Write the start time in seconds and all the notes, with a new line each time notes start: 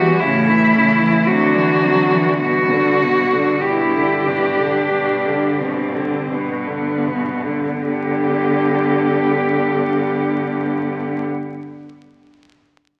Already playing: F#4 G4
0.00 E3
0.20 A2 C#3 C#4 E4
0.48 E3 E4
0.73 C#3 C#4
1.00 E3 E4
1.26 D3 F#3 C4 F#4
1.54 E3 D4
1.83 F#3 C4
2.13 E3 D4
2.39 G2 B2 B3 F#4
2.71 D3 D4
3.02 B2 B3
3.32 D3 D4
3.61 G2 B2 E4 G4
3.95 D3
4.25 B2 D4
4.57 D3
4.90 G2 B2
5.25 D3
5.59 B2 C4
5.95 D3
6.30 G2 B2 B3
6.67 D3
7.06 B2
7.43 D3
7.81 G2 D3 B3 G4